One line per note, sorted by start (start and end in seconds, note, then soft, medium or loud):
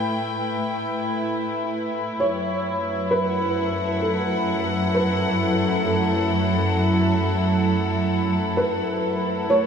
0.00 2.19 A2 medium
0.00 2.23 A3 medium
0.00 9.67 E4 medium
0.00 4.95 B4 medium
0.00 2.24 G5 medium
2.20 9.46 F#2 medium
2.20 9.51 F#3 medium
2.20 9.50 A3 medium
2.20 9.50 E4 medium
2.20 3.16 C#5 medium
3.11 4.07 B4 medium
3.24 9.51 F#5 medium
3.57 9.67 A4 medium
4.02 4.98 A4 medium
4.95 5.89 B4 medium
5.85 8.55 A4 medium
8.57 9.46 B4 medium
9.50 9.67 A3 medium
9.50 9.67 E4 medium
9.50 9.67 C#5 medium